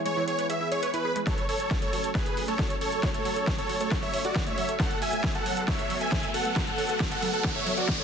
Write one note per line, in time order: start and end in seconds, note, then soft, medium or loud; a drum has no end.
0.00 1.25 E3 medium
0.00 1.23 G#3 medium
0.00 1.25 B3 medium
0.00 1.23 G#4 medium
0.05 0.13 G#3 medium
0.05 0.24 C#5 medium
0.05 closed hi-hat medium
0.17 0.24 E3 loud
0.28 0.35 G#4 medium
0.28 0.46 C#5 medium
0.28 closed hi-hat medium
0.39 0.43 B4 medium
0.39 closed hi-hat medium
0.50 0.52 G#4 medium
0.50 0.68 E5 medium
0.50 closed hi-hat medium
0.61 0.65 E4 medium
0.72 0.75 G#4 medium
0.72 0.90 C#5 medium
0.72 closed hi-hat medium
0.83 0.87 B4 loud
0.83 closed hi-hat medium
0.94 1.01 E4 medium
0.94 1.21 B4 medium
0.94 closed hi-hat medium
1.05 1.08 G#4 medium
1.16 1.20 G#3 medium
1.16 closed hi-hat medium
1.27 1.34 F#3 loud
1.27 8.04 F#3 medium
1.27 8.04 A3 medium
1.27 4.76 C#4 medium
1.27 1.45 A4 medium
1.27 8.04 A4 medium
1.27 1.45 C#5 medium
1.27 kick loud
1.27 snare soft
1.27 closed hi-hat medium
1.27 riser medium
1.38 1.45 A4 medium
1.38 closed hi-hat medium
1.49 1.77 A4 medium
1.49 1.77 C#5 medium
1.49 1.54 C#5 medium
1.49 open hi-hat loud
1.60 1.63 A4 medium
1.60 closed hi-hat medium
1.71 1.76 F#4 medium
1.71 kick loud
1.71 snare soft
1.71 closed hi-hat medium
1.82 1.89 A3 medium
1.82 2.10 A4 medium
1.82 2.10 C#5 medium
1.82 closed hi-hat medium
1.93 2.00 F#3 medium
1.93 open hi-hat medium
2.04 2.11 A4 medium
2.04 closed hi-hat medium
2.15 2.43 G#4 medium
2.15 2.43 B4 medium
2.15 2.20 C#5 medium
2.15 kick loud
2.15 snare soft
2.15 closed hi-hat medium
2.26 2.29 A4 medium
2.26 closed hi-hat medium
2.37 2.42 F#4 medium
2.37 open hi-hat loud
2.48 2.55 A3 medium
2.48 2.76 A4 medium
2.48 2.76 C#5 medium
2.48 closed hi-hat medium
2.59 2.66 F#3 loud
2.59 kick loud
2.59 snare soft
2.59 closed hi-hat medium
2.70 2.77 A4 medium
2.70 closed hi-hat medium
2.81 3.09 A4 medium
2.81 2.86 C#5 medium
2.81 3.09 C#5 loud
2.81 open hi-hat loud
2.92 2.95 A4 medium
2.92 closed hi-hat medium
3.03 3.08 F#4 medium
3.03 kick loud
3.03 snare medium
3.03 closed hi-hat medium
3.14 3.21 A3 medium
3.14 3.51 A4 medium
3.14 3.51 C#5 loud
3.14 closed hi-hat medium
3.25 3.32 F#3 loud
3.25 open hi-hat loud
3.36 3.43 A4 medium
3.36 closed hi-hat medium
3.47 3.52 C#5 medium
3.47 kick loud
3.47 snare medium
3.47 closed hi-hat medium
3.58 3.61 A4 medium
3.58 3.77 A4 medium
3.58 3.77 C#5 medium
3.58 closed hi-hat medium
3.69 3.74 F#4 medium
3.69 open hi-hat loud
3.81 3.88 A3 medium
3.81 3.99 A4 medium
3.81 3.99 C#5 medium
3.81 closed hi-hat medium
3.92 3.99 F#3 loud
3.92 kick loud
3.92 snare medium
3.92 closed hi-hat medium
4.03 4.10 A4 medium
4.03 4.21 C#5 medium
4.03 4.21 E5 medium
4.03 open hi-hat medium
4.14 4.18 C#5 medium
4.14 open hi-hat loud
4.25 4.43 F#4 medium
4.25 4.27 A4 medium
4.25 4.43 D5 medium
4.25 closed hi-hat medium
4.36 4.40 F#4 medium
4.36 kick loud
4.36 snare medium
4.36 closed hi-hat medium
4.47 4.54 A3 medium
4.47 4.74 C#5 medium
4.47 4.74 E5 loud
4.47 closed hi-hat medium
4.58 4.65 F#3 loud
4.58 open hi-hat loud
4.69 4.76 A4 medium
4.69 closed hi-hat medium
4.80 8.04 B3 medium
4.80 4.98 A4 medium
4.80 4.84 C#5 medium
4.80 4.98 F#5 medium
4.80 kick loud
4.80 snare medium
4.80 closed hi-hat medium
4.91 4.94 A4 medium
4.91 closed hi-hat medium
5.02 5.06 F#4 medium
5.02 5.30 E5 medium
5.02 5.30 G#5 loud
5.02 open hi-hat loud
5.13 5.20 A3 medium
5.13 closed hi-hat medium
5.24 5.31 F#3 loud
5.24 kick loud
5.24 snare medium
5.24 closed hi-hat medium
5.35 5.42 A4 medium
5.35 5.63 A4 medium
5.35 5.63 F#5 loud
5.35 closed hi-hat medium
5.46 5.51 C#5 medium
5.46 open hi-hat loud
5.57 5.60 A4 medium
5.57 closed hi-hat medium
5.68 5.73 F#4 medium
5.68 5.96 C#5 medium
5.68 5.96 E5 loud
5.68 kick loud
5.68 snare medium
5.68 closed hi-hat medium
5.79 5.86 A3 medium
5.79 closed hi-hat medium
5.90 5.97 F#3 loud
5.90 open hi-hat loud
6.01 6.08 A4 medium
6.01 6.29 E5 medium
6.01 6.29 G#5 loud
6.01 closed hi-hat medium
6.12 6.17 C#5 medium
6.12 kick loud
6.12 snare medium
6.12 closed hi-hat medium
6.23 6.26 A4 medium
6.23 closed hi-hat medium
6.34 6.39 F#4 medium
6.34 6.62 A4 medium
6.34 6.62 F#5 loud
6.34 open hi-hat loud
6.45 6.52 A3 medium
6.45 closed hi-hat medium
6.56 6.63 F#3 loud
6.56 kick loud
6.56 snare medium
6.56 closed hi-hat medium
6.67 6.74 A4 medium
6.67 7.04 A4 medium
6.67 7.04 F#5 loud
6.67 closed hi-hat medium
6.78 6.83 C#5 medium
6.78 open hi-hat loud
6.89 6.92 A4 medium
6.89 closed hi-hat medium
7.00 7.05 F#4 medium
7.00 kick loud
7.00 snare medium
7.00 closed hi-hat medium
7.11 7.18 A3 medium
7.11 7.30 A4 medium
7.11 7.30 F#5 medium
7.11 closed hi-hat medium
7.22 7.29 F#3 loud
7.22 open hi-hat loud
7.33 7.40 A4 medium
7.33 7.52 A4 medium
7.33 7.52 F#5 medium
7.33 closed hi-hat medium
7.44 kick loud
7.44 snare medium
7.44 closed hi-hat medium
7.55 7.58 A4 medium
7.55 7.74 C#5 medium
7.55 7.74 E5 medium
7.55 open hi-hat medium
7.66 7.71 F#3 loud
7.66 open hi-hat loud
7.77 7.85 F#3 loud
7.77 7.96 F#4 medium
7.77 7.96 D5 medium
7.77 closed hi-hat medium
7.89 7.93 C#5 medium
7.89 kick loud
7.89 snare medium
7.89 closed hi-hat medium
8.00 8.04 A4 medium
8.00 8.04 C#5 loud
8.00 8.04 C#5 medium
8.00 closed hi-hat medium